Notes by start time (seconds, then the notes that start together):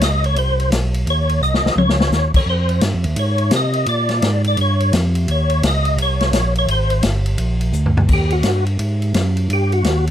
0.01 C#2 D#5, snare, hi-hat pedal, ride
0.24 C#5, ride
0.35 C2 C5, ride
0.60 ride
0.71 B1, snare, hi-hat pedal, ride
0.94 ride
1.07 D#2 C#5, ride
1.29 ride
1.42 C2 D#5, hi-hat pedal
1.54 snare
1.64 C2, snare
1.76 C#2 C#5, high tom
1.89 snare
2.01 snare
2.11 D#2, snare, hi-hat pedal
2.34 D#2 C#5, kick, crash
2.46 F2 C5
2.69 ride
2.81 G2, snare, hi-hat pedal, ride
2.94 F2
3.04 D#2, ride
3.16 G#2 C#5, ride
3.38 ride
3.51 C3, snare, hi-hat pedal, ride
3.56 D#5
3.73 ride
3.86 A#2 D5, ride
4.09 snare, ride
4.22 G#2, snare, hi-hat pedal, ride
4.44 D5, ride
4.57 G2, ride
4.61 C#5
4.80 ride
4.93 F2, snare, hi-hat pedal, ride
5.15 ride
5.28 D#2 C#5, ride
5.50 ride
5.63 C#2 D#5, snare, hi-hat pedal, ride
5.85 ride
5.97 C2, ride
6.02 C#5
6.21 snare, ride
6.32 A#1, snare, hi-hat pedal, ride
6.55 C#5, ride
6.67 G#1, ride
6.71 C5
6.90 ride
7.03 G1, snare, hi-hat pedal, ride
7.26 ride
7.38 A#1, ride
7.61 ride
7.73 D2, hi-hat pedal
7.86 floor tom
7.97 floor tom
8.08 D#2, kick, crash
8.13 G4
8.30 F#4, ride
8.43 G2, snare, hi-hat pedal, ride
8.66 ride
8.79 G#2, ride
9.02 ride
9.14 F#2, snare, hi-hat pedal, ride
9.37 ride
9.49 G2, ride
9.53 G4
9.72 F#4, ride
9.84 D#2, snare, hi-hat pedal, ride
10.07 ride